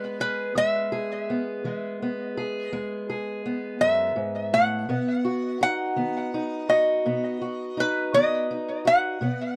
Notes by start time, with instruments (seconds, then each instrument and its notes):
Already playing: steel-string acoustic guitar E3 G#3 B3 G#4, resonator guitar played with a steel bar B4
0.20 steel-string acoustic guitar G#4, resonator guitar played with a steel bar B4
0.55 steel-string acoustic guitar E2 G#3, resonator guitar played with a steel bar E5
0.92 steel-string acoustic guitar G#4
1.30 steel-string acoustic guitar B3
1.64 steel-string acoustic guitar E3 G#3
2.02 steel-string acoustic guitar B3
2.37 steel-string acoustic guitar G#4
2.66 resonator guitar played with a steel bar D#5
2.72 steel-string acoustic guitar E2 G#3
3.10 steel-string acoustic guitar G#4
3.46 steel-string acoustic guitar B3
3.81 steel-string acoustic guitar F#2, resonator guitar played with a steel bar E5
4.16 steel-string acoustic guitar G#2
4.53 steel-string acoustic guitar A2, resonator guitar played with a steel bar F#5
4.89 steel-string acoustic guitar B2 B3
5.25 steel-string acoustic guitar F#4
5.61 steel-string acoustic guitar D#4, resonator guitar played with a steel bar F#5
5.96 steel-string acoustic guitar D#3 B3
6.34 steel-string acoustic guitar D#4
6.69 steel-string acoustic guitar F#4, resonator guitar played with a steel bar D#5
7.06 steel-string acoustic guitar B2 B3
7.41 steel-string acoustic guitar F#4
7.77 steel-string acoustic guitar D#4, resonator guitar played with a steel bar B4
8.13 steel-string acoustic guitar D#3 B3, resonator guitar played with a steel bar D#5
8.51 steel-string acoustic guitar D#4
8.85 steel-string acoustic guitar F#4, resonator guitar played with a steel bar F#5
9.21 steel-string acoustic guitar B2 B3